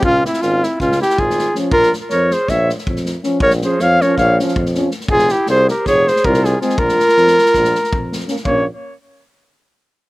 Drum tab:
SD |--ooo-o-oooo-oo-o-|-oo-o-o-o-oo-oo-o-|-oo-o-o-o-oo-oo-oo|-oo-o-o-o-oo-oo-oo|
BD |o-------o---o-----|o-------o---o-----|o-------o---o-----|o-------o---o-----|

SD |-ooooooooooo--oooo|------------------|
BD |o-------o---o-----|o-----------------|